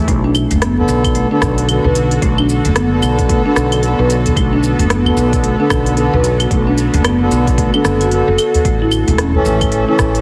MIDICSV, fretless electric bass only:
0, 0, Header, 1, 2, 480
1, 0, Start_track
1, 0, Key_signature, 2, "minor"
1, 0, Tempo, 535714
1, 73, Time_signature, 4, 2, 24, 8
1, 9150, End_track
2, 0, Start_track
2, 0, Title_t, "Fretless electric bass"
2, 0, Program_c, 0, 35
2, 70, Note_on_c, 0, 35, 92
2, 404, Note_off_c, 0, 35, 0
2, 457, Note_on_c, 0, 30, 88
2, 758, Note_off_c, 0, 30, 0
2, 793, Note_on_c, 0, 35, 87
2, 1125, Note_off_c, 0, 35, 0
2, 1268, Note_on_c, 0, 35, 94
2, 1603, Note_off_c, 0, 35, 0
2, 1651, Note_on_c, 0, 35, 86
2, 1956, Note_off_c, 0, 35, 0
2, 1990, Note_on_c, 0, 35, 92
2, 2324, Note_off_c, 0, 35, 0
2, 2373, Note_on_c, 0, 30, 92
2, 2677, Note_off_c, 0, 30, 0
2, 2708, Note_on_c, 0, 35, 84
2, 3043, Note_off_c, 0, 35, 0
2, 3192, Note_on_c, 0, 35, 92
2, 3525, Note_off_c, 0, 35, 0
2, 3574, Note_on_c, 0, 35, 89
2, 3877, Note_off_c, 0, 35, 0
2, 3910, Note_on_c, 0, 35, 91
2, 4244, Note_off_c, 0, 35, 0
2, 4291, Note_on_c, 0, 30, 93
2, 4596, Note_off_c, 0, 30, 0
2, 4631, Note_on_c, 0, 35, 94
2, 4964, Note_off_c, 0, 35, 0
2, 5111, Note_on_c, 0, 35, 95
2, 5444, Note_off_c, 0, 35, 0
2, 5498, Note_on_c, 0, 35, 93
2, 5799, Note_off_c, 0, 35, 0
2, 5830, Note_on_c, 0, 35, 91
2, 6164, Note_off_c, 0, 35, 0
2, 6218, Note_on_c, 0, 30, 96
2, 6519, Note_off_c, 0, 30, 0
2, 6554, Note_on_c, 0, 35, 90
2, 6885, Note_off_c, 0, 35, 0
2, 7033, Note_on_c, 0, 30, 86
2, 7365, Note_off_c, 0, 30, 0
2, 7417, Note_on_c, 0, 30, 83
2, 7492, Note_off_c, 0, 30, 0
2, 7750, Note_on_c, 0, 33, 90
2, 8084, Note_off_c, 0, 33, 0
2, 8133, Note_on_c, 0, 28, 95
2, 8437, Note_off_c, 0, 28, 0
2, 8472, Note_on_c, 0, 33, 93
2, 8805, Note_off_c, 0, 33, 0
2, 8951, Note_on_c, 0, 33, 84
2, 9150, Note_off_c, 0, 33, 0
2, 9150, End_track
0, 0, End_of_file